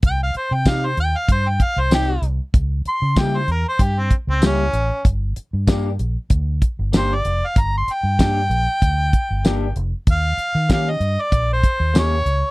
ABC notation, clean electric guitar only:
X:1
M:4/4
L:1/8
Q:"Swing 16ths" 1/4=96
K:Gm
V:1 name="Clean electric guitar"
z2 [CEG] z3 [CEG] z | z2 [G,^A,=EG] z3 [G,A,EG] z | z2 [B,DG] z3 [B,DG] z | z2 [B,DG] z3 [B,DG] z |
z2 [B,_DG] z3 [B,DG] z |]